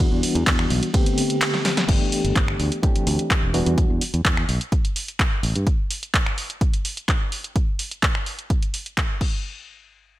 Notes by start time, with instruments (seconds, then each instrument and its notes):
Already playing: reed electric piano E3 G3 B3 D4 F#4
0.12 fingered electric bass E2
0.23 open hi-hat
0.35 fingered electric bass E2, closed hi-hat
0.47 fingered electric bass E2, kick, clap, closed hi-hat, ride
0.59 finger snap
0.70 fingered electric bass B1, open hi-hat
0.83 closed hi-hat
0.93 reed electric piano D3 A3 B3 C4 G4, kick, closed hi-hat, ride
1.06 closed hi-hat
1.18 open hi-hat
1.30 closed hi-hat
1.41 finger snap, clap, closed hi-hat, ride
1.54 snare
1.65 snare, open hi-hat
1.77 snare, closed hi-hat
1.88 fingered electric bass G1, reed electric piano E3 A3 B3 D4 G4, kick, closed hi-hat, crash
2.12 open hi-hat
2.24 fingered electric bass G1, closed hi-hat
2.36 kick, clap, closed hi-hat
2.48 finger snap
2.60 fingered electric bass D2, open hi-hat
2.72 closed hi-hat
2.82 reed electric piano E3 A3 C4 D4 G4, kick, closed hi-hat
2.96 muted fingered electric bass stroke, closed hi-hat
3.07 fingered electric bass D2, open hi-hat
3.19 closed hi-hat
3.30 finger snap, kick, clap, closed hi-hat
3.43 fingered electric bass E1
3.54 reed electric piano E3 G3 B3 D4 F#4, open hi-hat
3.66 fingered electric bass E2, closed hi-hat
3.78 kick, closed hi-hat
3.90 fingered electric bass E2
4.01 open hi-hat
4.14 fingered electric bass E2, closed hi-hat
4.25 kick, clap, closed hi-hat
4.37 finger snap
4.49 fingered electric bass B1, open hi-hat
4.61 closed hi-hat
4.72 kick, closed hi-hat
4.85 closed hi-hat
4.96 open hi-hat
5.08 closed hi-hat
5.19 finger snap, kick, clap, closed hi-hat
5.43 fingered electric bass A1, open hi-hat
5.55 fingered electric bass G2, closed hi-hat
5.67 kick, closed hi-hat
5.91 open hi-hat
6.03 closed hi-hat
6.14 kick, clap, closed hi-hat
6.26 finger snap
6.38 open hi-hat
6.50 closed hi-hat
6.61 kick, closed hi-hat
6.74 closed hi-hat
6.85 open hi-hat
6.97 closed hi-hat
7.08 finger snap, kick, clap, closed hi-hat
7.32 open hi-hat
7.44 closed hi-hat
7.56 kick, closed hi-hat
7.79 open hi-hat
7.91 closed hi-hat
8.03 kick, clap, closed hi-hat
8.15 finger snap
8.26 open hi-hat
8.39 closed hi-hat
8.50 kick, closed hi-hat
8.62 closed hi-hat
8.74 open hi-hat
8.86 closed hi-hat
8.97 finger snap, kick, clap, closed hi-hat
9.21 kick, crash